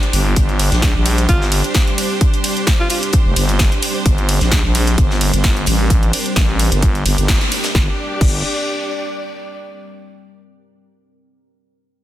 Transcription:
Already playing: G3 D4 F4 G4 C5
0.03 closed hi-hat
0.13 G1, closed hi-hat, open hi-hat
0.36 G1 C4 G4, kick, closed hi-hat, ride
0.49 closed hi-hat
0.59 closed hi-hat, open hi-hat, ride
0.72 A#1, snare, closed hi-hat
0.82 kick, snare, closed hi-hat, ride
0.95 A#1
1.06 closed hi-hat, open hi-hat, ride
1.18 closed hi-hat
1.29 G1 F4, kick, closed hi-hat, ride
1.42 snare
1.52 closed hi-hat, open hi-hat, ride
1.64 closed hi-hat
1.74 kick, snare, closed hi-hat, ride
1.88 closed hi-hat
1.98 closed hi-hat, open hi-hat, ride
2.21 kick, closed hi-hat, ride
2.34 closed hi-hat
2.44 closed hi-hat, open hi-hat, ride
2.57 closed hi-hat
2.67 kick, snare, closed hi-hat, ride
2.80 F4
2.90 F4, closed hi-hat, open hi-hat, ride
3.03 closed hi-hat
3.13 kick, closed hi-hat, ride
3.26 F1
3.36 G1, closed hi-hat, open hi-hat, ride
3.49 closed hi-hat
3.59 kick, snare, closed hi-hat, ride
3.72 closed hi-hat
3.82 closed hi-hat, open hi-hat, ride
4.06 G1 A#4, kick, closed hi-hat, ride
4.18 closed hi-hat
4.29 closed hi-hat, open hi-hat, ride
4.41 A#1, snare, closed hi-hat
4.52 kick, snare, closed hi-hat, ride
4.64 A#1
4.75 closed hi-hat, open hi-hat, ride
4.87 closed hi-hat
4.98 G1, kick, closed hi-hat, ride
5.11 snare
5.21 closed hi-hat, open hi-hat, ride
5.34 G1, closed hi-hat
5.44 kick, snare, closed hi-hat, ride
5.57 closed hi-hat
5.66 A1, closed hi-hat, open hi-hat, ride
5.90 kick, closed hi-hat, ride
6.03 closed hi-hat
6.13 closed hi-hat, open hi-hat, ride
6.26 closed hi-hat
6.36 A1, kick, snare, closed hi-hat, ride
6.59 closed hi-hat, open hi-hat, ride
6.72 G1, closed hi-hat
6.83 kick, closed hi-hat, ride
6.95 closed hi-hat
7.06 G1, closed hi-hat, open hi-hat, ride
7.18 G1, closed hi-hat
7.28 kick, snare, closed hi-hat, ride
7.41 closed hi-hat
7.52 closed hi-hat, open hi-hat, ride
7.64 snare, closed hi-hat
7.75 G1 D4, kick, snare
7.82 G4
7.90 D5
8.21 G1, kick, crash

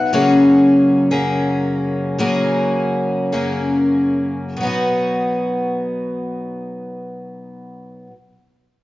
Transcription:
Already playing: B2 F#3 B3 D#4 F#4 F#5
0.13 F#2 C#3 F#3 A#3 C#4 G#4
1.11 F#2 C#3 F#3 A#3 C#4 G#4
2.19 F#2 C#3 F#3 A#3 C#4 G#4
3.32 F#2 C#3 F#3 A#3 C#4 G#4
4.57 B2
4.61 F#3 B3
4.65 D#4 F#4

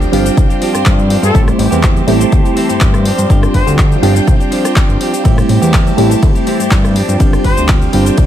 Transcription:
Already playing: F3 C4 D4 F4 G4 C5 G5
0.02 closed hi-hat, cabasa
0.12 G1 F3 G3 C4 D4 F4 G4, open hi-hat
0.25 C4 D4 G4, closed hi-hat, cabasa
0.37 C2, kick, closed hi-hat, cabasa
0.49 C4 D4 G4, closed hi-hat, cabasa
0.61 F3 C4 D4 G4, open hi-hat
0.74 G2 C4 D4 G4, cross-stick, closed hi-hat, cabasa
0.85 G2 F3 C4 D4 G4, kick, clap, closed hi-hat, cabasa
0.99 cabasa
1.09 F3 C4 D4 G4, open hi-hat
1.22 G2 C4 D4 G4 A4, closed hi-hat, cabasa
1.34 A1 E3 G3 A3 C4 E4 G4 A5, kick, closed hi-hat, cabasa
1.47 C4 E4 G4, cross-stick, cabasa
1.59 A1, open hi-hat
1.71 E2 C4 E4 G4, closed hi-hat, cabasa
1.83 E3 C4 E4 G4, kick, clap, closed hi-hat, cabasa
1.97 closed hi-hat, cabasa
2.07 A1 E3 G3 A3 C4 E4 G4, open hi-hat
2.20 C4 E4 G4, closed hi-hat, cabasa
2.32 D2, kick, closed hi-hat, cabasa
2.44 C4 E4 G4, closed hi-hat, cabasa
2.56 E3 C4 E4 G4, open hi-hat
2.69 G2 C4 E4 G4, closed hi-hat, cabasa
2.81 G2 E3 C4 E4 G4, kick, clap, closed hi-hat, cabasa
2.94 cross-stick, cabasa
3.05 F3 C4 D4 F4 G4 G5, open hi-hat
3.18 G2, closed hi-hat, cabasa
3.29 G1 F3 G3 C4 D4 F4 G4, kick, closed hi-hat, cabasa
3.42 C4 D4 G4, cross-stick, cabasa
3.54 G1 C5, kick, open hi-hat
3.67 D2 C4 D4 G4, closed hi-hat, cabasa
3.78 F3 C4 D4 G4, kick, clap, closed hi-hat, cabasa
3.92 closed hi-hat, cabasa
4.01 G1 F3 G3 C4 D4 F4 G4, open hi-hat
4.15 C4 D4 G4, closed hi-hat, cabasa
4.28 C2, kick, closed hi-hat, cabasa
4.40 C4 D4 G4, closed hi-hat, cabasa
4.51 F3 C4 D4 G4, open hi-hat
4.64 C4 D4 G4, cross-stick, closed hi-hat, cabasa
4.76 F3 C4 D4 G4, kick, clap, closed hi-hat, cabasa
4.89 G1, cabasa
5.00 F3 C4 D4 G4, open hi-hat
5.13 C4 D4 G4, closed hi-hat, cabasa
5.24 A1 E3 G3 A3 C4 E4 G4 A5, kick, closed hi-hat, ride, cabasa
5.38 C4 E4 G4, cross-stick, cabasa
5.49 A1, open hi-hat
5.62 E2 C4 E4 G4, closed hi-hat, cabasa
5.74 C4 E4 G4, kick, clap, closed hi-hat, ride, cabasa
5.87 closed hi-hat, cabasa
5.97 A1 E3 G3 A3 C4 E4 G4, open hi-hat
6.11 C4 E4 G4, closed hi-hat, cabasa
6.22 D2, kick, closed hi-hat, ride, cabasa
6.35 C4 E4 G4, closed hi-hat, cabasa
6.47 E3 C4 E4 G4, open hi-hat
6.59 G2 C4 E4 G4, closed hi-hat, cabasa
6.71 G2 E3 C4 E4 G4, kick, clap, closed hi-hat, ride, cabasa
6.85 cross-stick, cabasa
6.95 F3 C4 D4 F4 G4 C5 G5, open hi-hat
7.09 G2, closed hi-hat, cabasa
7.19 G1 F3 G3 C4 D4 F4 G4, kick, closed hi-hat, ride, cabasa
7.33 C4 D4 G4, cross-stick, cabasa
7.44 G1 C5, kick, open hi-hat
7.57 D2 C4 D4 G4, closed hi-hat, cabasa
7.68 F3 C4 D4 G4, kick, clap, closed hi-hat, ride, cabasa
7.82 closed hi-hat, cabasa
7.93 G1 F3 G3 C4 D4 F4 G4, open hi-hat
8.06 C4 D4 G4, closed hi-hat, cabasa
8.18 C2, kick, closed hi-hat, ride, cabasa

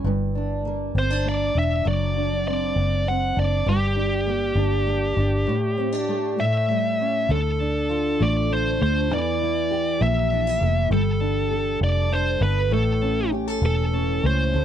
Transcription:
Already playing: G3 C#4
0.04 G1 G2
0.35 D4
0.65 A#3
0.95 G1 C4
0.99 C5
1.10 D4
1.25 A#3 D5
1.55 E1 D4 E5
1.85 F#1 F#3 D5
2.16 D4
2.47 C4 D5
2.76 F#1 D4
3.07 C4 F#5
3.36 F#1 D4 D5
3.66 G1 G2 G4
3.96 D4
4.27 A#3
4.55 G1 D4
4.87 A#3
5.17 G1 D4
5.47 A2
5.77 C4
5.92 D4
6.08 A3
6.38 A2 E5
6.70 G3
7.00 C#4
7.29 D2 D3 A4
7.60 D4
7.89 F4
8.20 A1 A3 D5
8.50 D4 C5
8.81 D2 A3 C5
9.11 E2 E3 D5
9.42 E4
9.71 G4
10.01 A#1 A#3 E5
10.32 D4
10.47 E4
10.60 F1 A#3
10.90 G1 G3 A4
11.21 D4
11.51 A4
11.81 F1 D5
12.11 D4 C5
12.41 G1 B3 B4
12.71 A1 A2 A4
13.02 C#4
13.32 G4
13.47 A4
13.62 E1 E3
13.66 A4
13.93 C#4
14.23 C#2 A3 C5
14.54 D2 D3

